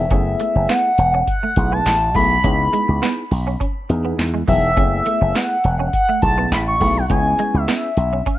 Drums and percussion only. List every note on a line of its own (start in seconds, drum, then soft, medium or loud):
0.10 kick loud
0.10 closed hi-hat medium
0.40 closed hi-hat medium
0.69 snare loud
0.69 clap medium
0.69 closed hi-hat medium
0.98 closed hi-hat medium
1.27 kick loud
1.27 closed hi-hat medium
1.56 kick medium
1.56 closed hi-hat medium
1.86 snare loud
1.86 clap medium
1.86 closed hi-hat medium
2.15 kick medium
2.15 open hi-hat medium
2.44 kick loud
2.44 closed hi-hat medium
2.73 closed hi-hat medium
3.03 snare loud
3.03 clap medium
3.03 closed hi-hat medium
3.32 open hi-hat medium
3.61 kick loud
3.61 closed hi-hat medium
3.90 closed hi-hat medium
4.19 snare medium
4.19 clap medium
4.19 closed hi-hat medium
4.48 kick medium
4.48 open hi-hat medium
4.77 kick loud
4.77 closed hi-hat medium
5.06 closed hi-hat medium
5.35 snare loud
5.35 clap medium
5.35 closed hi-hat medium
5.64 closed hi-hat medium
5.93 kick loud
5.93 closed hi-hat medium
6.22 kick loud
6.22 closed hi-hat medium
6.52 snare loud
6.52 clap medium
6.52 closed hi-hat medium
6.81 kick medium
6.81 open hi-hat medium
7.10 kick loud
7.10 closed hi-hat medium
7.39 closed hi-hat medium
7.68 snare loud
7.68 clap medium
7.68 closed hi-hat medium
7.97 closed hi-hat medium
8.26 kick loud
8.26 closed hi-hat medium